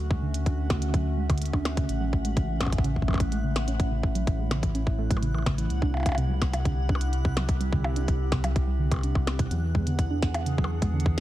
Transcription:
Already playing: detuned saw bass D2, ambient pad D3 A3 C#4 F#4 E5, synth texture F#5
0.11 synth arpeggio sound G#3, kick
0.22 synth arpeggio sound D3
0.34 closed hi-hat
0.46 synth arpeggio sound D4, kick, closed hi-hat
0.70 synth arpeggio sound C#3, kick, snare, percussion blips
0.82 closed hi-hat
0.94 synth arpeggio sound F#3, kick, closed hi-hat
1.18 synth arpeggio sound G#3
1.30 synth arpeggio sound D3, kick, closed hi-hat, percussion blips
1.38 closed hi-hat
1.42 closed hi-hat
1.46 closed hi-hat
1.53 synth arpeggio sound D4, kick, percussion blips
1.65 snare, percussion blips
1.77 synth arpeggio sound C#3, kick, closed hi-hat
1.89 detuned saw bass A1, ambient pad A2, closed hi-hat
2.01 synth arpeggio sound F#3
2.13 kick
2.25 synth arpeggio sound G#3, closed hi-hat
2.37 synth arpeggio sound C#3, kick, closed hi-hat
2.61 synth arpeggio sound C#4, kick, snare, percussion blips
2.63 ambient pad E4, percussion blips
2.65 kick, percussion blips
2.68 percussion blips
2.70 kick, closed hi-hat, percussion blips
2.78 kick
2.84 synth arpeggio sound C#3, closed hi-hat
2.96 kick
3.02 kick
3.08 synth arpeggio sound F#3, kick, percussion blips
3.11 percussion blips
3.13 kick, percussion blips
3.15 percussion blips
3.18 kick, closed hi-hat, percussion blips
3.32 synth arpeggio sound G#3, closed hi-hat
3.44 synth arpeggio sound C#3
3.56 snare, percussion blips
3.68 synth arpeggio sound C#4, closed hi-hat
3.80 kick, closed hi-hat
3.92 synth arpeggio sound C#3
4.03 kick
4.15 synth arpeggio sound F#3, closed hi-hat
4.27 kick, closed hi-hat
4.39 synth arpeggio sound G#3
4.51 synth arpeggio sound C#3, snare, percussion blips
4.63 kick, closed hi-hat
4.75 synth arpeggio sound C#4, closed hi-hat
4.87 kick
4.99 synth arpeggio sound A3
5.11 synth arpeggio sound F#3, kick, closed hi-hat
5.17 percussion blips
5.22 synth arpeggio sound C#3, closed hi-hat
5.34 synth arpeggio sound E3, percussion blips
5.38 percussion blips
5.42 synth arpeggio sound C#3, kick, percussion blips
5.46 snare, percussion blips
5.50 percussion blips
5.54 synth arpeggio sound E3, percussion blips
5.58 closed hi-hat
5.70 detuned saw bass C2, ambient pad C3, closed hi-hat
5.82 synth arpeggio sound D4, ambient pad G4, kick
5.92 ambient pad C4, percussion blips
5.97 percussion blips
6.00 percussion blips
6.03 kick, closed hi-hat, percussion blips
6.06 percussion blips
6.09 percussion blips
6.12 percussion blips
6.15 synth arpeggio sound C3, closed hi-hat, percussion blips
6.30 synth arpeggio sound F#3
6.42 kick, snare, percussion blips
6.53 synth arpeggio sound G3, closed hi-hat, percussion blips
6.65 synth arpeggio sound D3, kick, closed hi-hat
6.89 synth arpeggio sound D4, kick
6.95 percussion blips
7.01 closed hi-hat
7.13 closed hi-hat
7.25 synth arpeggio sound C3, kick
7.37 synth arpeggio sound F#3, snare, percussion blips
7.49 kick, closed hi-hat
7.61 synth arpeggio sound G3, closed hi-hat
7.72 synth arpeggio sound D3, kick
7.84 percussion blips
7.96 synth arpeggio sound D4, closed hi-hat
8.08 kick, closed hi-hat
8.32 synth arpeggio sound C3, kick, snare, percussion blips
8.44 synth arpeggio sound F#3, closed hi-hat, percussion blips
8.56 kick, closed hi-hat
8.68 synth arpeggio sound G3
8.80 synth arpeggio sound D3
8.92 kick, closed hi-hat, percussion blips
8.94 percussion blips
8.96 percussion blips
8.99 percussion blips
9.03 synth arpeggio sound D4, closed hi-hat
9.15 kick, percussion blips
9.27 snare, percussion blips
9.39 synth arpeggio sound C3, kick, closed hi-hat
9.51 detuned saw bass E2, ambient pad E3, synth arpeggio sound F#3, closed hi-hat
9.62 ambient pad B3
9.73 synth arpeggio sound G#3, ambient pad G#4, kick
9.87 synth arpeggio sound D3, closed hi-hat
9.99 ambient pad D4, kick, closed hi-hat
10.08 synth arpeggio sound D4, ambient pad F#5
10.23 kick, snare
10.34 closed hi-hat, percussion blips
10.46 synth arpeggio sound C#3, closed hi-hat
10.58 synth arpeggio sound F#3, kick
10.64 percussion blips
10.82 synth arpeggio sound G#3, kick, closed hi-hat
10.94 synth arpeggio sound D3
11.00 closed hi-hat
11.06 kick

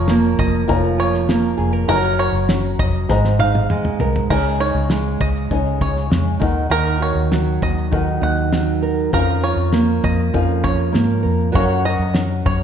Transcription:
Already playing: fingered electric bass F1, nylon-string guitar F3 A#4, upright piano F4 A#4 C#5 A#5, five-string banjo C#5
0.08 nylon-string guitar A#3, snare, shaker
0.24 shaker
0.39 fingered electric bass F1, five-string banjo D#5, kick, shaker
0.54 shaker
0.67 fingered electric bass F1, nylon-string guitar F3, upright piano F4 A#4 C#5 A#5, kick, shaker
0.84 shaker
0.98 nylon-string guitar F4, five-string banjo C#5
1.13 snare, shaker
1.29 nylon-string guitar A#3, snare, shaker
1.44 shaker
1.58 fingered electric bass F1, nylon-string guitar G#4, shaker
1.73 nylon-string guitar A#4, shaker
1.88 fingered electric bass F#1, nylon-string guitar F#3, upright piano F#4 A#4 C#5 A#5, five-string banjo A#4, shaker
2.05 shaker
2.19 five-string banjo C#5
2.33 fingered electric bass F#1, shaker
2.49 nylon-string guitar C#4, snare, shaker
2.64 shaker
2.79 fingered electric bass F1, five-string banjo D#5, kick, shaker
2.95 shaker
3.08 fingered electric bass G#1, nylon-string guitar G#2, upright piano G#4 C5 D#5 A#5, kick, snare
3.25 snare
3.39 nylon-string guitar D#4, five-string banjo F5, high tom
3.55 high tom
3.70 nylon-string guitar G#3, mid tom
3.85 mid tom
3.99 fingered electric bass C2, nylon-string guitar A#4, floor tom
4.16 floor tom
4.29 fingered electric bass C#2, nylon-string guitar C#3 G#4, upright piano D#4 C#5 G#5, five-string banjo A#4, kick, crash
4.46 shaker
4.60 nylon-string guitar D#4, five-string banjo C#5
4.75 fingered electric bass C#2, shaker
4.90 nylon-string guitar G#3, snare, shaker
5.05 shaker
5.20 fingered electric bass C#2, five-string banjo D#5, kick
5.36 shaker
5.50 fingered electric bass C#2, nylon-string guitar C#3, upright piano D#4 C#5 G#5, kick, shaker
5.66 shaker
5.81 nylon-string guitar C#4, five-string banjo C#5, kick
5.96 snare, shaker
6.10 fingered electric bass F2, nylon-string guitar G#3, snare, shaker
6.27 shaker
6.40 fingered electric bass D#2, nylon-string guitar D#3, upright piano D#4 A#4 F#5, kick
6.58 shaker
6.70 fingered electric bass D#2, nylon-string guitar D#3 A#4, five-string banjo A#4, shaker
6.88 shaker
7.00 nylon-string guitar F#4, five-string banjo C#5
7.15 fingered electric bass D#2, shaker
7.31 nylon-string guitar F#3, snare, shaker
7.47 shaker
7.62 fingered electric bass D#2, five-string banjo D#5, kick
7.78 shaker
7.91 nylon-string guitar D#3, upright piano D#4 A#4 F#5, kick, shaker
8.07 shaker
8.21 fingered electric bass D#2, nylon-string guitar D#4, five-string banjo F#5
8.37 shaker
8.53 nylon-string guitar F#3, snare, shaker
8.68 shaker
8.83 nylon-string guitar A#4
8.99 shaker
9.12 fingered electric bass F2, nylon-string guitar F3 A#4, upright piano C#4 A#4 F5, five-string banjo A#4, kick, shaker
9.28 shaker
9.43 nylon-string guitar F4, five-string banjo C#5
9.56 fingered electric bass F2, shaker
9.73 nylon-string guitar A#3, snare, shaker
9.88 shaker
10.03 fingered electric bass F2, five-string banjo D#5, kick, shaker
10.19 shaker
10.34 fingered electric bass F2, nylon-string guitar F3, upright piano C#4 A#4 F5, kick, shaker
10.49 shaker
10.64 nylon-string guitar C#4, five-string banjo C#5, kick, shaker
10.78 shaker
10.92 fingered electric bass G#2, nylon-string guitar A#3, snare, shaker
11.09 shaker
11.23 fingered electric bass F2, nylon-string guitar A#4, shaker
11.40 shaker
11.52 fingered electric bass F#2, nylon-string guitar F#3 A#4, upright piano C#4, five-string banjo C#5, kick, shaker
11.56 upright piano A#4 F5
11.64 upright piano F#5
11.71 shaker
11.85 nylon-string guitar F#4, five-string banjo D#5
11.99 fingered electric bass F#2, shaker
12.14 nylon-string guitar C#4, snare, shaker
12.30 shaker
12.45 fingered electric bass F#2, five-string banjo C#5, kick

